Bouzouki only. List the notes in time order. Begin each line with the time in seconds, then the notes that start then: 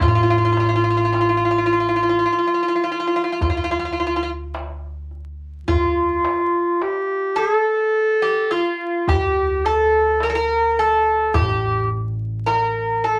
0.02 F4
0.08 F4
0.15 F4
0.23 F4
0.30 F4
0.38 F4
0.45 F4
0.52 F4
0.60 F4
0.69 F4
0.76 F4
0.84 F4
0.90 F4
0.97 F4
1.05 F4
1.12 F4
1.21 F4
1.29 F4
1.37 F4
1.45 F4
1.51 F4
1.58 F4
1.66 F4
1.73 F4
1.80 F4
1.89 F4
1.96 F4
2.03 F4
2.09 F4
2.19 F4
2.26 F4
2.33 F4
2.38 F4
2.47 F4
2.54 F4
2.63 F4
2.68 F4
2.76 F4
2.84 F4
2.92 F4
3.00 F4
3.07 F4
3.16 F4
3.24 F4
3.32 F4
3.42 F4
3.50 F4
3.57 F4
3.64 F4
3.71 F4
3.79 F4
3.85 F4
3.93 F4
4.00 F4
4.07 F4
4.16 F4
4.23 F4
5.68 F4
7.36 A4
8.22 G4
8.51 F4
9.09 G4
9.66 A4
10.23 A#4
10.30 A4
10.35 A#4
10.79 A4
11.34 G4
12.46 A#4
13.04 A4